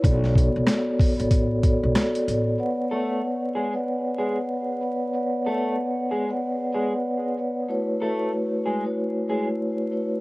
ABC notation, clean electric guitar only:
X:1
M:4/4
L:1/16
Q:"Swing 16ths" 1/4=94
K:Bdor
V:1 name="Clean electric guitar"
z16 | z2 [A,A]2 z2 [G,G] z3 [G,G] z4 z | z2 [A,A]2 z2 [G,G] z3 [G,G] z4 z | z2 [A,A]2 z2 [G,G] z3 [G,G] z4 z |]